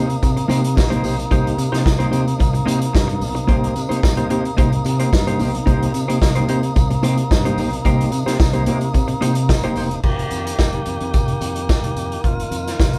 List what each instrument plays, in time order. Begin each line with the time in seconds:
Already playing: fingered electric bass C3, tonewheel organ C3 A#3 D#4
0.10 muted clean electric guitar stroke, closed hi-hat
0.22 fingered electric bass C3, muted clean electric guitar stroke, kick, closed hi-hat, tambourine
0.37 muted clean electric guitar stroke, closed hi-hat
0.48 fingered electric bass C3, clean electric guitar A#3 D#4 G4 C5, closed hi-hat, tambourine
0.63 muted clean electric guitar stroke, closed hi-hat
0.76 fingered electric bass A#1, muted clean electric guitar stroke, kick, snare, tambourine
0.90 clean electric guitar A#3 D#4 G4 C5, closed hi-hat
1.03 fingered electric bass B1, clean electric guitar A#3 D#4 G4 C5, open hi-hat, tambourine
1.19 muted clean electric guitar stroke, closed hi-hat
1.31 fingered electric bass C2, clean electric guitar A#3 D#4 G4 C5, kick, closed hi-hat, tambourine
1.47 closed hi-hat
1.58 fingered electric bass C3, muted clean electric guitar stroke, closed hi-hat, tambourine
1.72 fingered electric bass C3, clean electric guitar A#3 D#4 G4 C5, snare, closed hi-hat
1.85 fingered electric bass C2, muted clean electric guitar stroke, kick, snare, tambourine
1.99 clean electric guitar A#3 D#4 G4 C5, closed hi-hat
2.11 fingered electric bass C3, clean electric guitar A#3 D#4 G4 C5, closed hi-hat, tambourine
2.27 muted clean electric guitar stroke, closed hi-hat
2.39 fingered electric bass C2, muted clean electric guitar stroke, kick, closed hi-hat, tambourine
2.53 muted clean electric guitar stroke, closed hi-hat
2.66 fingered electric bass C3, clean electric guitar A#3 D#4 G4 C5, closed hi-hat, tambourine
2.80 muted clean electric guitar stroke, closed hi-hat
2.93 fingered electric bass G2, muted clean electric guitar stroke, kick, snare, tambourine
3.08 muted clean electric guitar stroke, closed hi-hat
3.21 fingered electric bass B1, open hi-hat, tambourine
3.35 muted clean electric guitar stroke, closed hi-hat
3.47 fingered electric bass C2, clean electric guitar A#3 D#4 G4 C5, kick, closed hi-hat
3.64 closed hi-hat
3.75 fingered electric bass C3, muted clean electric guitar stroke, closed hi-hat, tambourine
3.89 fingered electric bass C3, clean electric guitar A#3 D#4 G4 C5, closed hi-hat
4.03 fingered electric bass C2, kick, snare, tambourine
4.17 clean electric guitar A#3 D#4 G4 C5, closed hi-hat
4.30 fingered electric bass C3, clean electric guitar A#3 D#4 G4 C5, closed hi-hat
4.45 muted clean electric guitar stroke, closed hi-hat
4.57 fingered electric bass C2, clean electric guitar A#3 D#4 G4 C5, kick, closed hi-hat, tambourine
4.72 muted clean electric guitar stroke, closed hi-hat
4.84 fingered electric bass C3, muted clean electric guitar stroke, closed hi-hat, tambourine
5.00 clean electric guitar A#3 D#4 G4 C5, closed hi-hat
5.13 fingered electric bass G2, kick, snare, tambourine
5.27 clean electric guitar A#3 D#4 G4 C5, closed hi-hat
5.39 fingered electric bass B1, clean electric guitar A#3 D#4 G4 C5, open hi-hat, tambourine
5.54 muted clean electric guitar stroke, closed hi-hat
5.66 fingered electric bass C2, clean electric guitar A#3 D#4 G4 C5, kick, closed hi-hat
5.83 closed hi-hat
5.94 fingered electric bass C3, closed hi-hat, tambourine
6.08 fingered electric bass C3, clean electric guitar A#3 D#4 G4 C5, closed hi-hat
6.22 fingered electric bass C2, kick, snare, tambourine
6.35 clean electric guitar A#3 D#4 G4 C5, closed hi-hat
6.48 fingered electric bass C3, clean electric guitar A#3 D#4 G4 C5, closed hi-hat
6.63 muted clean electric guitar stroke, closed hi-hat
6.76 fingered electric bass C2, muted clean electric guitar stroke, kick, closed hi-hat, tambourine
6.90 muted clean electric guitar stroke, closed hi-hat
7.03 fingered electric bass C3, clean electric guitar A#3 D#4 G4 C5, closed hi-hat, tambourine
7.18 muted clean electric guitar stroke, closed hi-hat
7.31 fingered electric bass G2, muted clean electric guitar stroke, kick, snare, tambourine
7.45 clean electric guitar A#3 D#4 G4 C5, closed hi-hat
7.57 fingered electric bass B1, clean electric guitar A#3 D#4 G4 C5, open hi-hat, tambourine
7.72 muted clean electric guitar stroke, closed hi-hat
7.85 fingered electric bass C2, clean electric guitar A#3 D#4 G4 C5, kick, closed hi-hat, tambourine
8.01 closed hi-hat
8.12 fingered electric bass C3, muted clean electric guitar stroke, closed hi-hat, tambourine
8.26 fingered electric bass C3, clean electric guitar A#3 D#4 G4 C5, snare, closed hi-hat
8.38 fingered electric bass C2, muted clean electric guitar stroke, kick, snare, tambourine
8.53 clean electric guitar A#3 D#4 G4 C5, closed hi-hat
8.66 fingered electric bass C3, clean electric guitar A#3 D#4 G4 C5, closed hi-hat
8.80 muted clean electric guitar stroke, closed hi-hat
8.94 fingered electric bass C3, muted clean electric guitar stroke, kick, closed hi-hat, tambourine
9.08 muted clean electric guitar stroke, closed hi-hat
9.21 fingered electric bass C3, clean electric guitar A#3 D#4 G4 C5, closed hi-hat, tambourine
9.35 muted clean electric guitar stroke, closed hi-hat
9.49 fingered electric bass D#1, muted clean electric guitar stroke, kick, snare, tambourine
9.63 clean electric guitar A#3 D#4 G4 C5, closed hi-hat
9.76 fingered electric bass E1, clean electric guitar A#3 D#4 G4 C5, open hi-hat, tambourine
9.91 muted clean electric guitar stroke, closed hi-hat
10.03 fingered electric bass F1, tonewheel organ D#3 A#3 G4, kick, crash, tambourine
10.19 closed hi-hat
10.31 fingered electric bass F2, closed hi-hat, tambourine
10.47 closed hi-hat
10.59 fingered electric bass F1, kick, snare, tambourine
10.73 closed hi-hat
10.86 fingered electric bass F2, closed hi-hat, tambourine
11.01 fingered electric bass F2, closed hi-hat
11.14 fingered electric bass F1, kick, closed hi-hat, tambourine
11.28 closed hi-hat
11.41 fingered electric bass F2, closed hi-hat, tambourine
11.56 closed hi-hat
11.69 fingered electric bass F1, kick, snare, tambourine
11.84 closed hi-hat
11.96 fingered electric bass F2, closed hi-hat, tambourine
12.12 closed hi-hat
12.24 fingered electric bass F1, tonewheel organ F4, kick, closed hi-hat
12.40 closed hi-hat
12.51 fingered electric bass F2, closed hi-hat, tambourine
12.67 snare, closed hi-hat
12.80 fingered electric bass F1, kick, snare, tambourine
12.93 closed hi-hat